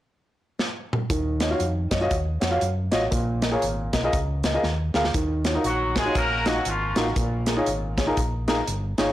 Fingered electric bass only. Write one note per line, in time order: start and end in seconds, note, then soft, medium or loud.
1.10 1.53 D#2 medium
1.60 1.87 F2 medium
1.91 2.08 F#2 medium
2.11 2.37 D#2 medium
2.42 2.59 F2 medium
2.62 2.88 F#2 medium
2.92 3.09 A1 medium
3.12 3.55 A#1 loud
3.63 3.89 G#1 medium
3.93 4.10 B1 medium
4.13 4.56 C#2 medium
4.64 4.90 D#2 medium
4.94 5.11 D2 medium
5.15 5.57 D#2 medium
5.65 6.08 A#1 medium
6.15 6.58 A#1 medium
6.66 6.92 G#1 medium
6.97 7.13 A1 medium
7.16 7.59 A#1 medium
7.67 8.10 G#1 medium
8.17 8.60 A#1 medium
8.68 8.94 G1 medium
8.99 9.13 G#1 medium